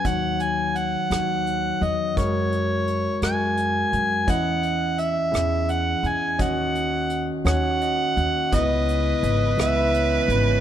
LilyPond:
<<
  \new Staff \with { instrumentName = "Harmonica" } { \time 6/8 \key dis \phrygian \tempo 4. = 57 fis''8 gis''8 fis''4. dis''8 | cis''4. gis''4. | fis''4 e''4 fis''8 gis''8 | fis''4. fis''4. |
dis''4. e''4 r8 | }
  \new Staff \with { instrumentName = "Violin" } { \time 6/8 \key dis \phrygian r2. | r2. | r2. | r2. |
b'2. | }
  \new Staff \with { instrumentName = "Tine electric piano" } { \time 6/8 \key dis \phrygian << { r2. | r2. | r2. | r2 dis''8 fis''8 |
r2. | } \\ { <fis dis' cis''>4. <fis dis' cis''>4. | <gis fis' ais'>4. <gis fis' ais'>4. | <cis' e' dis''>4. <cis' e' gis'>4. | <cis' fis' dis''>4. <cis' fis' cis''>4. |
<b e' dis''>4. <b e' e''>4. | } >> }
  \new Staff \with { instrumentName = "Tine electric piano" } { \clef bass \time 6/8 \key dis \phrygian dis2. | <fis,, fis,>2. | <e, e>2. | <dis, dis>2. |
<cis, cis>2. | }
  \new Staff \with { instrumentName = "String section" } { \time 6/8 \key dis \phrygian r2. | r2. | r2. | r2. |
<e gis cis' e'>2. | }
  \new Staff \with { instrumentName = "Upright bass" } { \clef bass \time 6/8 \key dis \phrygian dis,4. dis,4 e,8 | fis,4. fis,4 fis,8 | e,4. e,4 e,8 | dis,4. dis,4 dis,8 |
cis,4 gis,,8 cis,4 gis,,8 | }
  \new DrumStaff \with { instrumentName = "Drums" } \drummode { \time 6/8 <hh bd>8 hh8 hh8 <hh ss>8 hh8 hh8 | <hh bd>8 hh8 hh8 <hh ss>8 hh8 hh8 | <hh bd>8 hh8 hh8 <hh ss>8 hh8 hh8 | <hh bd>8 hh8 hh8 <hh ss>8 hh8 hh8 |
<hh bd>8 hh8 hh8 <hh ss>8 hh8 hh8 | }
>>